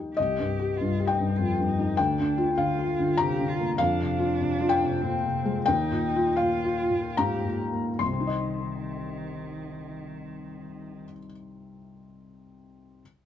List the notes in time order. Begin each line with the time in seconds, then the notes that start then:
Already playing: D#2 D#4 G4 D#5 G5
0.15 G4 D#5
0.19 C2
0.39 G2
0.60 G4
0.77 G2 F4
1.00 G4
1.07 D#4 G5
1.20 G2
1.37 F2 F4
1.59 G2
1.66 D#4
1.79 D#4
1.96 D2 D4 G5
2.19 D3
2.38 F4
2.56 D3 F4 F5
2.79 F4
2.99 D3
3.17 C3 G4 A#5
3.41 D3
3.49 F4
3.60 A#3
3.78 F2 D4 F5
4.00 C3
4.19 F4
4.41 C3
4.61 F4
4.69 G5
4.82 C3
5.02 A#2 C4
5.24 C3
5.45 G#3
5.66 D#2 D#4 G5
5.91 A#2
6.16 F4
6.37 A#2 F4 F5
6.64 F4
6.90 A#2
7.17 G#2 G4 A#5
7.45 A#2
7.73 A#3
7.99 C2 D#3 C6
8.06 C3
8.13 C4
8.20 D#4
8.27 D#5